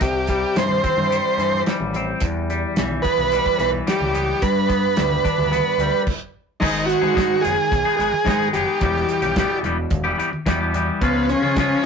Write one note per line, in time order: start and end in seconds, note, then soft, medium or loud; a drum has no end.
0.01 0.43 C2 medium
0.01 1.39 C3 medium
0.01 0.28 G4 medium
0.01 kick loud
0.01 closed hi-hat medium
0.27 1.10 G3 medium
0.27 0.57 G4 medium
0.27 kick medium
0.27 closed hi-hat medium
0.56 0.77 G2 medium
0.56 1.39 E3 medium
0.56 1.63 C5 medium
0.56 snare loud
0.56 closed hi-hat loud
0.69 high conga medium
0.83 1.95 C4 medium
0.83 kick medium
0.83 closed hi-hat medium
0.83 high conga medium
0.83 low conga medium
0.97 1.18 G2 medium
0.97 high conga medium
1.10 1.67 G3 medium
1.10 closed hi-hat medium
1.38 1.59 G2 medium
1.38 2.22 E3 medium
1.38 closed hi-hat medium
1.52 low conga medium
1.66 2.50 G3 medium
1.66 snare loud
1.66 closed hi-hat medium
1.80 2.12 A1 medium
1.80 high conga medium
1.93 2.23 C4 medium
1.93 closed hi-hat medium
1.93 low conga medium
2.20 2.63 E2 medium
2.20 3.60 E2 medium
2.20 kick loud
2.20 closed hi-hat medium
2.50 3.32 G3 medium
2.50 closed hi-hat medium
2.76 2.98 B1 medium
2.76 3.59 E3 medium
2.76 snare loud
2.76 closed hi-hat medium
2.91 high conga medium
3.02 4.13 B3 medium
3.02 3.58 B4 loud
3.02 kick medium
3.02 closed hi-hat medium
3.02 high conga medium
3.02 low conga medium
3.18 3.38 B1 medium
3.18 high conga medium
3.32 3.86 G3 medium
3.32 closed hi-hat medium
3.46 kick medium
3.59 3.80 B1 loud
3.59 4.42 E3 medium
3.59 3.71 B4 loud
3.59 closed hi-hat medium
3.74 low conga medium
3.87 4.42 G3 medium
3.87 4.44 G4 medium
3.87 snare loud
3.87 closed hi-hat medium
4.00 4.32 C#2 medium
4.00 high conga medium
4.14 4.42 B3 medium
4.14 closed hi-hat medium
4.14 low conga medium
4.42 5.79 G2 medium
4.42 4.84 G2 medium
4.42 6.03 B4 medium
4.42 kick loud
4.42 closed hi-hat medium
4.68 5.51 B3 medium
4.68 kick medium
4.68 closed hi-hat medium
4.96 5.18 D2 medium
4.96 5.79 G3 medium
4.96 snare loud
4.96 closed hi-hat loud
5.11 high conga medium
5.24 6.06 D4 medium
5.24 kick medium
5.24 closed hi-hat medium
5.24 high conga medium
5.24 low conga medium
5.38 5.59 D2 medium
5.38 high conga medium
5.52 6.06 B3 medium
5.52 closed hi-hat loud
5.52 high conga medium
5.78 5.89 D2 loud
5.78 6.07 G3 medium
5.78 closed hi-hat medium
5.93 low conga medium
6.07 kick loud
6.07 crash medium
6.60 6.93 G#1 medium
6.60 7.13 G#2 medium
6.60 7.13 D#3 medium
6.60 7.03 G#3 medium
6.60 7.03 B3 medium
6.60 6.86 D#4 medium
6.60 7.01 D#4 medium
6.60 7.00 G#4 loud
6.60 kick loud
6.60 crash loud
6.86 7.44 F#4 medium
6.86 closed hi-hat medium
7.01 7.34 G#2 medium
7.01 7.14 G#3 medium
7.01 7.16 B3 medium
7.01 7.15 D#4 medium
7.01 7.16 G#4 medium
7.01 high conga medium
7.14 7.70 G#2 medium
7.14 7.70 D#3 medium
7.14 7.40 G#3 medium
7.14 7.42 B3 medium
7.14 7.42 D#4 loud
7.14 7.43 G#4 loud
7.14 kick loud
7.14 closed hi-hat medium
7.14 low conga medium
7.18 snare loud
7.41 7.55 F#1 medium
7.41 7.57 G#3 medium
7.41 7.56 B3 medium
7.41 7.56 D#4 medium
7.41 7.96 G#4 loud
7.41 7.56 G#4 medium
7.41 closed hi-hat medium
7.41 low conga medium
7.58 muted clean electric guitar stroke soft
7.72 7.82 B1 medium
7.72 kick loud
7.72 closed hi-hat medium
7.72 high conga medium
7.85 7.98 G#3 medium
7.85 7.99 B3 medium
7.85 8.00 D#4 medium
7.85 8.00 G#4 medium
7.97 8.09 G#1 medium
7.97 8.13 G#3 medium
7.97 8.12 B3 medium
7.97 8.49 G#4 loud
7.97 closed hi-hat medium
7.97 low conga medium
8.01 8.12 D#4 medium
8.01 8.12 G#4 medium
8.13 muted clean electric guitar stroke soft
8.13 high conga medium
8.25 8.66 G#2 medium
8.25 8.47 G#2 loud
8.25 8.67 D#3 medium
8.25 8.41 G#3 loud
8.25 8.39 B3 medium
8.25 8.38 D#4 loud
8.25 8.37 G#4 loud
8.25 kick loud
8.25 snare loud
8.25 closed hi-hat medium
8.39 8.52 G#3 medium
8.39 8.53 B3 medium
8.39 8.54 D#4 medium
8.39 8.55 G#4 medium
8.53 8.64 F#1 loud
8.53 8.79 G#3 medium
8.53 8.79 B3 medium
8.53 8.80 D#4 medium
8.53 9.59 G4 medium
8.53 8.80 G#4 medium
8.53 closed hi-hat medium
8.53 low conga medium
8.81 9.02 E1 medium
8.81 9.35 E2 medium
8.81 9.36 B2 medium
8.81 9.23 E3 medium
8.81 9.22 G3 medium
8.81 9.22 B3 medium
8.81 9.21 G4 medium
8.81 kick loud
8.81 closed hi-hat medium
8.96 snare soft
9.09 closed hi-hat medium
9.22 9.43 B1 medium
9.22 9.36 E3 medium
9.22 9.37 G3 medium
9.22 9.37 B3 medium
9.22 9.38 G4 medium
9.22 closed hi-hat medium
9.22 high conga medium
9.36 9.91 E2 medium
9.36 9.91 B2 medium
9.36 9.63 E3 loud
9.36 9.64 G3 medium
9.36 9.64 B3 medium
9.36 9.65 G4 loud
9.36 kick loud
9.36 snare loud
9.36 closed hi-hat medium
9.36 low conga medium
9.63 9.84 E1 medium
9.63 9.78 E3 medium
9.63 9.78 G3 medium
9.63 9.77 B3 medium
9.63 9.77 G4 medium
9.63 closed hi-hat medium
9.63 low conga medium
9.78 muted clean electric guitar stroke soft
9.91 10.12 E1 loud
9.91 kick loud
9.91 closed hi-hat medium
9.91 high conga medium
10.04 10.16 E3 medium
10.04 10.17 G3 medium
10.04 10.17 B3 medium
10.04 10.18 G4 medium
10.18 10.31 E3 medium
10.18 10.30 G3 medium
10.18 10.31 B3 medium
10.18 10.30 G4 medium
10.18 closed hi-hat medium
10.18 low conga medium
10.31 muted clean electric guitar stroke soft
10.31 high conga medium
10.46 10.87 E2 medium
10.46 10.88 E2 loud
10.46 10.88 B2 loud
10.46 10.62 E3 loud
10.46 10.61 G3 loud
10.46 10.60 B3 loud
10.46 10.59 G4 loud
10.46 kick loud
10.46 snare loud
10.46 closed hi-hat medium
10.61 10.72 E3 medium
10.61 10.73 G3 medium
10.61 10.74 B3 medium
10.61 10.75 G4 medium
10.73 10.99 E3 medium
10.73 11.00 G3 medium
10.73 11.00 B3 medium
10.73 11.01 G4 medium
10.73 closed hi-hat medium
10.73 low conga medium
11.01 11.33 C#2 medium
11.01 11.56 C#3 medium
11.01 11.57 F3 medium
11.01 11.44 G#3 medium
11.01 11.29 B3 medium
11.01 11.44 C#4 loud
11.01 11.42 F4 loud
11.01 kick loud
11.01 closed hi-hat medium
11.29 11.86 C#4 loud
11.29 closed hi-hat medium
11.42 11.74 C#3 medium
11.42 11.57 G#3 medium
11.42 11.58 C#4 medium
11.42 11.59 F4 medium
11.42 high conga medium
11.56 11.86 C#3 medium
11.56 11.84 F3 loud
11.56 11.85 G#3 loud
11.56 11.86 C#4 medium
11.56 11.86 F4 loud
11.56 kick loud
11.56 snare loud
11.56 closed hi-hat medium
11.56 low conga medium